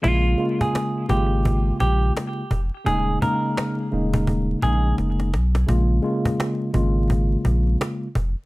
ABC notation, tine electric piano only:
X:1
M:4/4
L:1/8
Q:"Swing 16ths" 1/4=85
K:Bbdor
V:1 name="Tine electric piano"
[D,A,B,F] [D,A,B,F]2 [D,A,B,F]4 z | [D,A,B,E] [D,A,B,E]2 [D,A,B,E]2 [D,A,B,E]2 z | [D,A,B,F] [D,A,B,F]2 [D,A,B,F]4 z |]